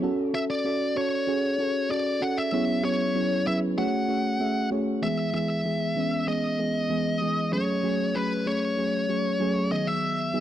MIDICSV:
0, 0, Header, 1, 3, 480
1, 0, Start_track
1, 0, Tempo, 625000
1, 22, Time_signature, 4, 2, 24, 8
1, 7988, End_track
2, 0, Start_track
2, 0, Title_t, "Lead electric guitar"
2, 0, Program_c, 0, 29
2, 267, Note_on_c, 0, 76, 90
2, 305, Note_off_c, 0, 76, 0
2, 387, Note_on_c, 0, 74, 96
2, 745, Note_off_c, 0, 74, 0
2, 748, Note_on_c, 0, 73, 92
2, 1465, Note_off_c, 0, 73, 0
2, 1468, Note_on_c, 0, 74, 99
2, 1706, Note_on_c, 0, 78, 100
2, 1712, Note_off_c, 0, 74, 0
2, 1824, Note_on_c, 0, 76, 99
2, 1828, Note_off_c, 0, 78, 0
2, 2183, Note_off_c, 0, 76, 0
2, 2186, Note_on_c, 0, 73, 95
2, 2663, Note_off_c, 0, 73, 0
2, 2666, Note_on_c, 0, 76, 87
2, 2730, Note_off_c, 0, 76, 0
2, 2905, Note_on_c, 0, 78, 89
2, 3592, Note_off_c, 0, 78, 0
2, 3864, Note_on_c, 0, 76, 87
2, 4094, Note_off_c, 0, 76, 0
2, 4103, Note_on_c, 0, 76, 90
2, 4822, Note_off_c, 0, 76, 0
2, 4825, Note_on_c, 0, 75, 85
2, 5781, Note_off_c, 0, 75, 0
2, 5784, Note_on_c, 0, 73, 94
2, 6264, Note_on_c, 0, 71, 85
2, 6277, Note_off_c, 0, 73, 0
2, 6506, Note_on_c, 0, 73, 87
2, 6510, Note_off_c, 0, 71, 0
2, 7460, Note_off_c, 0, 73, 0
2, 7463, Note_on_c, 0, 75, 90
2, 7583, Note_off_c, 0, 75, 0
2, 7583, Note_on_c, 0, 76, 89
2, 7988, Note_off_c, 0, 76, 0
2, 7988, End_track
3, 0, Start_track
3, 0, Title_t, "FM electric piano"
3, 0, Program_c, 1, 5
3, 0, Control_c, 1, 64, 127
3, 16, Note_on_c, 1, 61, 122
3, 21, Note_on_c, 1, 66, 103
3, 26, Note_on_c, 1, 69, 127
3, 32, Control_c, 1, 64, 0
3, 161, Control_c, 1, 64, 127
3, 201, Note_off_c, 1, 61, 0
3, 203, Note_off_c, 1, 66, 0
3, 206, Note_off_c, 1, 69, 0
3, 258, Note_on_c, 1, 61, 78
3, 262, Note_on_c, 1, 66, 72
3, 267, Note_on_c, 1, 69, 84
3, 442, Note_off_c, 1, 61, 0
3, 444, Note_off_c, 1, 66, 0
3, 446, Note_off_c, 1, 69, 0
3, 497, Note_on_c, 1, 61, 79
3, 501, Note_on_c, 1, 66, 71
3, 506, Note_on_c, 1, 69, 88
3, 681, Note_off_c, 1, 61, 0
3, 683, Note_off_c, 1, 66, 0
3, 685, Note_off_c, 1, 69, 0
3, 736, Note_on_c, 1, 61, 76
3, 741, Note_on_c, 1, 66, 71
3, 746, Note_on_c, 1, 69, 92
3, 921, Note_off_c, 1, 61, 0
3, 923, Note_off_c, 1, 66, 0
3, 926, Note_off_c, 1, 69, 0
3, 977, Note_on_c, 1, 61, 100
3, 982, Note_on_c, 1, 66, 90
3, 987, Note_on_c, 1, 68, 107
3, 1161, Note_off_c, 1, 61, 0
3, 1164, Note_off_c, 1, 66, 0
3, 1166, Note_off_c, 1, 68, 0
3, 1217, Note_on_c, 1, 61, 79
3, 1222, Note_on_c, 1, 66, 69
3, 1227, Note_on_c, 1, 69, 86
3, 1401, Note_off_c, 1, 61, 0
3, 1404, Note_off_c, 1, 66, 0
3, 1406, Note_off_c, 1, 69, 0
3, 1457, Note_on_c, 1, 61, 74
3, 1462, Note_on_c, 1, 66, 70
3, 1466, Note_on_c, 1, 69, 79
3, 1641, Note_off_c, 1, 61, 0
3, 1644, Note_off_c, 1, 66, 0
3, 1646, Note_off_c, 1, 69, 0
3, 1696, Note_on_c, 1, 61, 77
3, 1701, Note_on_c, 1, 66, 74
3, 1706, Note_on_c, 1, 69, 85
3, 1881, Note_off_c, 1, 61, 0
3, 1883, Note_off_c, 1, 66, 0
3, 1886, Note_off_c, 1, 69, 0
3, 1936, Note_on_c, 1, 54, 90
3, 1939, Note_on_c, 1, 59, 92
3, 1941, Note_on_c, 1, 61, 90
3, 1942, Note_on_c, 1, 64, 87
3, 1944, Note_on_c, 1, 68, 89
3, 1946, Note_on_c, 1, 73, 98
3, 1952, Control_c, 1, 64, 0
3, 2101, Control_c, 1, 64, 127
3, 2121, Note_off_c, 1, 54, 0
3, 2122, Note_off_c, 1, 59, 0
3, 2123, Note_off_c, 1, 61, 0
3, 2124, Note_off_c, 1, 64, 0
3, 2125, Note_off_c, 1, 68, 0
3, 2126, Note_off_c, 1, 73, 0
3, 2177, Note_on_c, 1, 54, 74
3, 2178, Note_on_c, 1, 59, 72
3, 2180, Note_on_c, 1, 61, 70
3, 2182, Note_on_c, 1, 64, 66
3, 2184, Note_on_c, 1, 68, 73
3, 2186, Note_on_c, 1, 73, 83
3, 2361, Note_off_c, 1, 54, 0
3, 2361, Note_off_c, 1, 59, 0
3, 2362, Note_off_c, 1, 61, 0
3, 2363, Note_off_c, 1, 64, 0
3, 2364, Note_off_c, 1, 68, 0
3, 2365, Note_off_c, 1, 73, 0
3, 2418, Note_on_c, 1, 54, 76
3, 2420, Note_on_c, 1, 59, 71
3, 2421, Note_on_c, 1, 61, 69
3, 2423, Note_on_c, 1, 64, 69
3, 2426, Note_on_c, 1, 68, 71
3, 2427, Note_on_c, 1, 73, 82
3, 2601, Note_off_c, 1, 54, 0
3, 2603, Note_off_c, 1, 59, 0
3, 2603, Note_off_c, 1, 61, 0
3, 2604, Note_off_c, 1, 64, 0
3, 2605, Note_off_c, 1, 68, 0
3, 2606, Note_off_c, 1, 73, 0
3, 2657, Note_on_c, 1, 54, 76
3, 2659, Note_on_c, 1, 59, 72
3, 2661, Note_on_c, 1, 61, 71
3, 2663, Note_on_c, 1, 64, 71
3, 2665, Note_on_c, 1, 68, 72
3, 2666, Note_on_c, 1, 71, 87
3, 2841, Note_off_c, 1, 54, 0
3, 2842, Note_off_c, 1, 59, 0
3, 2843, Note_off_c, 1, 61, 0
3, 2844, Note_off_c, 1, 64, 0
3, 2845, Note_off_c, 1, 68, 0
3, 2846, Note_off_c, 1, 71, 0
3, 2896, Note_on_c, 1, 57, 91
3, 2899, Note_on_c, 1, 61, 85
3, 2901, Note_on_c, 1, 66, 88
3, 2903, Note_on_c, 1, 68, 83
3, 2905, Note_on_c, 1, 73, 102
3, 2911, Control_c, 1, 64, 0
3, 3027, Control_c, 1, 64, 127
3, 3081, Note_off_c, 1, 57, 0
3, 3082, Note_off_c, 1, 61, 0
3, 3083, Note_off_c, 1, 66, 0
3, 3084, Note_off_c, 1, 68, 0
3, 3085, Note_off_c, 1, 73, 0
3, 3137, Note_on_c, 1, 57, 76
3, 3139, Note_on_c, 1, 61, 69
3, 3142, Note_on_c, 1, 66, 66
3, 3144, Note_on_c, 1, 68, 68
3, 3146, Note_on_c, 1, 73, 86
3, 3321, Note_off_c, 1, 57, 0
3, 3322, Note_off_c, 1, 61, 0
3, 3324, Note_off_c, 1, 66, 0
3, 3324, Note_off_c, 1, 68, 0
3, 3326, Note_off_c, 1, 73, 0
3, 3376, Note_on_c, 1, 57, 72
3, 3378, Note_on_c, 1, 61, 67
3, 3381, Note_on_c, 1, 66, 67
3, 3383, Note_on_c, 1, 68, 68
3, 3385, Note_on_c, 1, 76, 84
3, 3561, Note_off_c, 1, 57, 0
3, 3562, Note_off_c, 1, 61, 0
3, 3563, Note_off_c, 1, 66, 0
3, 3564, Note_off_c, 1, 68, 0
3, 3565, Note_off_c, 1, 76, 0
3, 3615, Note_on_c, 1, 57, 85
3, 3618, Note_on_c, 1, 61, 81
3, 3620, Note_on_c, 1, 66, 79
3, 3622, Note_on_c, 1, 68, 81
3, 3624, Note_on_c, 1, 73, 99
3, 3800, Note_off_c, 1, 57, 0
3, 3801, Note_off_c, 1, 61, 0
3, 3802, Note_off_c, 1, 66, 0
3, 3804, Note_off_c, 1, 68, 0
3, 3805, Note_off_c, 1, 73, 0
3, 3854, Note_on_c, 1, 52, 85
3, 3858, Note_on_c, 1, 56, 80
3, 3860, Note_on_c, 1, 59, 73
3, 3864, Note_on_c, 1, 68, 93
3, 3871, Control_c, 1, 64, 0
3, 4024, Control_c, 1, 64, 127
3, 4040, Note_off_c, 1, 52, 0
3, 4042, Note_off_c, 1, 56, 0
3, 4043, Note_off_c, 1, 59, 0
3, 4045, Note_off_c, 1, 68, 0
3, 4094, Note_on_c, 1, 52, 90
3, 4098, Note_on_c, 1, 56, 83
3, 4100, Note_on_c, 1, 59, 83
3, 4104, Note_on_c, 1, 68, 101
3, 4280, Note_off_c, 1, 52, 0
3, 4281, Note_off_c, 1, 56, 0
3, 4283, Note_off_c, 1, 59, 0
3, 4284, Note_off_c, 1, 68, 0
3, 4335, Note_on_c, 1, 52, 72
3, 4338, Note_on_c, 1, 56, 64
3, 4341, Note_on_c, 1, 59, 66
3, 4345, Note_on_c, 1, 68, 77
3, 4520, Note_off_c, 1, 52, 0
3, 4521, Note_off_c, 1, 56, 0
3, 4523, Note_off_c, 1, 59, 0
3, 4525, Note_off_c, 1, 68, 0
3, 4575, Note_on_c, 1, 52, 73
3, 4578, Note_on_c, 1, 56, 64
3, 4581, Note_on_c, 1, 59, 69
3, 4584, Note_on_c, 1, 61, 81
3, 4760, Note_off_c, 1, 52, 0
3, 4762, Note_off_c, 1, 56, 0
3, 4763, Note_off_c, 1, 59, 0
3, 4764, Note_off_c, 1, 61, 0
3, 4813, Note_on_c, 1, 52, 65
3, 4816, Note_on_c, 1, 56, 60
3, 4819, Note_on_c, 1, 59, 65
3, 4822, Note_on_c, 1, 68, 77
3, 4999, Note_off_c, 1, 52, 0
3, 5000, Note_off_c, 1, 56, 0
3, 5002, Note_off_c, 1, 59, 0
3, 5004, Note_off_c, 1, 68, 0
3, 5055, Note_on_c, 1, 52, 70
3, 5058, Note_on_c, 1, 56, 65
3, 5061, Note_on_c, 1, 59, 66
3, 5064, Note_on_c, 1, 68, 74
3, 5240, Note_off_c, 1, 52, 0
3, 5242, Note_off_c, 1, 56, 0
3, 5243, Note_off_c, 1, 59, 0
3, 5244, Note_off_c, 1, 68, 0
3, 5295, Note_on_c, 1, 52, 88
3, 5297, Note_on_c, 1, 56, 80
3, 5301, Note_on_c, 1, 59, 86
3, 5304, Note_on_c, 1, 68, 91
3, 5480, Note_off_c, 1, 52, 0
3, 5481, Note_off_c, 1, 56, 0
3, 5483, Note_off_c, 1, 59, 0
3, 5484, Note_off_c, 1, 68, 0
3, 5536, Note_on_c, 1, 52, 85
3, 5538, Note_on_c, 1, 56, 76
3, 5541, Note_on_c, 1, 59, 76
3, 5545, Note_on_c, 1, 68, 91
3, 5721, Note_off_c, 1, 52, 0
3, 5722, Note_off_c, 1, 56, 0
3, 5723, Note_off_c, 1, 59, 0
3, 5725, Note_off_c, 1, 68, 0
3, 5774, Note_on_c, 1, 54, 82
3, 5778, Note_on_c, 1, 57, 78
3, 5781, Note_on_c, 1, 61, 81
3, 5784, Note_on_c, 1, 68, 99
3, 5793, Control_c, 1, 64, 0
3, 5915, Control_c, 1, 64, 127
3, 5960, Note_off_c, 1, 54, 0
3, 5962, Note_off_c, 1, 57, 0
3, 5963, Note_off_c, 1, 61, 0
3, 5964, Note_off_c, 1, 68, 0
3, 6016, Note_on_c, 1, 54, 93
3, 6018, Note_on_c, 1, 57, 79
3, 6022, Note_on_c, 1, 61, 85
3, 6024, Note_on_c, 1, 68, 101
3, 6200, Note_off_c, 1, 54, 0
3, 6202, Note_off_c, 1, 57, 0
3, 6203, Note_off_c, 1, 61, 0
3, 6205, Note_off_c, 1, 68, 0
3, 6254, Note_on_c, 1, 54, 73
3, 6258, Note_on_c, 1, 57, 66
3, 6262, Note_on_c, 1, 61, 66
3, 6264, Note_on_c, 1, 68, 82
3, 6440, Note_off_c, 1, 54, 0
3, 6441, Note_off_c, 1, 57, 0
3, 6443, Note_off_c, 1, 61, 0
3, 6445, Note_off_c, 1, 68, 0
3, 6496, Note_on_c, 1, 54, 71
3, 6499, Note_on_c, 1, 57, 66
3, 6502, Note_on_c, 1, 61, 70
3, 6505, Note_on_c, 1, 68, 81
3, 6680, Note_off_c, 1, 54, 0
3, 6682, Note_off_c, 1, 57, 0
3, 6683, Note_off_c, 1, 61, 0
3, 6685, Note_off_c, 1, 68, 0
3, 6736, Note_on_c, 1, 54, 70
3, 6739, Note_on_c, 1, 57, 62
3, 6742, Note_on_c, 1, 61, 64
3, 6745, Note_on_c, 1, 68, 78
3, 6920, Note_off_c, 1, 54, 0
3, 6922, Note_off_c, 1, 57, 0
3, 6924, Note_off_c, 1, 61, 0
3, 6925, Note_off_c, 1, 68, 0
3, 6975, Note_on_c, 1, 54, 73
3, 6978, Note_on_c, 1, 57, 66
3, 6981, Note_on_c, 1, 61, 66
3, 6984, Note_on_c, 1, 68, 76
3, 7160, Note_off_c, 1, 54, 0
3, 7161, Note_off_c, 1, 57, 0
3, 7163, Note_off_c, 1, 61, 0
3, 7165, Note_off_c, 1, 68, 0
3, 7215, Note_on_c, 1, 54, 105
3, 7218, Note_on_c, 1, 57, 97
3, 7221, Note_on_c, 1, 61, 94
3, 7224, Note_on_c, 1, 68, 113
3, 7400, Note_off_c, 1, 54, 0
3, 7402, Note_off_c, 1, 57, 0
3, 7403, Note_off_c, 1, 61, 0
3, 7404, Note_off_c, 1, 68, 0
3, 7456, Note_on_c, 1, 54, 76
3, 7459, Note_on_c, 1, 59, 71
3, 7462, Note_on_c, 1, 51, 67
3, 7465, Note_on_c, 1, 68, 84
3, 7473, Control_c, 1, 64, 0
3, 7608, Control_c, 1, 64, 127
3, 7843, Note_off_c, 1, 54, 0
3, 7844, Note_off_c, 1, 59, 0
3, 7846, Note_off_c, 1, 51, 0
3, 7848, Note_off_c, 1, 68, 0
3, 7935, Note_on_c, 1, 54, 97
3, 7937, Note_on_c, 1, 59, 83
3, 7940, Note_on_c, 1, 63, 87
3, 7943, Note_on_c, 1, 68, 100
3, 7988, Note_off_c, 1, 54, 0
3, 7988, Note_off_c, 1, 59, 0
3, 7988, Note_off_c, 1, 63, 0
3, 7988, Note_off_c, 1, 68, 0
3, 7988, End_track
0, 0, End_of_file